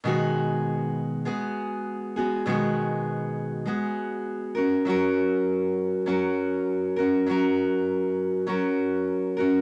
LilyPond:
\new Staff \with { instrumentName = "Steel-string acoustic guitar" } { \time 4/4 \key b \major \tempo 4 = 100 <b, dis gis b fis' gis'>2 <gis b fis' gis'>4. <gis b fis' gis'>8 | <b, dis gis b fis' gis'>2 <gis b fis' gis'>4. <cis' fis' ais'>8 | <fis cis' fis' ais'>2 <fis cis' fis' ais'>4. <cis' fis' ais'>8 | <fis cis' fis' ais'>2 <fis cis' fis' ais'>4. <cis' fis' ais'>8 | }